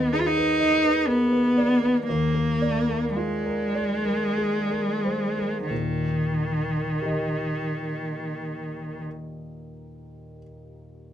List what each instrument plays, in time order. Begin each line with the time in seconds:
Already playing: grand piano D#2 B4 D#5, cello B3
0.13 cello D#4, grand piano G#4
0.20 cello F4
0.27 cello D#4
0.37 grand piano B4
0.60 grand piano D#5
0.84 grand piano B4
1.07 cello B3, grand piano A#4
1.32 grand piano B4
1.57 grand piano D5
1.83 grand piano B4
2.08 grand piano D#2, cello A#3
2.35 grand piano A#4
2.62 grand piano D5
2.89 grand piano A#4
3.16 cello G#3, grand piano F4
3.46 grand piano A#4
3.75 grand piano D5
4.05 grand piano A#4
4.38 grand piano G#4
4.71 grand piano A#4
5.05 grand piano C5
5.39 grand piano A#4
5.68 grand piano D#2 A#2, cello D#3
7.02 grand piano G4 A#4 D#5